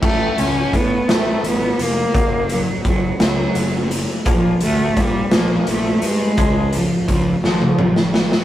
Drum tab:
CC |x-----------|------------|------------|------------|
HH |--x-x-x-x-x-|x-x-x-x-x-x-|x-x-x-x-x-x-|x-x-x-------|
SD |------o-----|------o-----|------o-----|------o--ooo|
T1 |------------|------------|------------|-------o----|
T2 |------------|------------|------------|--------o---|
BD |o---o-------|o---o-------|o---o-------|o---o-------|